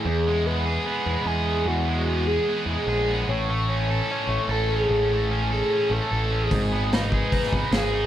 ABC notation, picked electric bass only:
X:1
M:4/4
L:1/16
Q:1/4=149
K:E
V:1 name="Picked electric bass" clef=bass
E,,8 z2 E,, z E,,4 | E,,8 z2 E,, z ^A,,,4 | A,,,8 z2 A,,, z A,,,4 | A,,,8 z2 A,,, z A,,,4 |
G,,,8 z2 G,,, z G,,,4 |]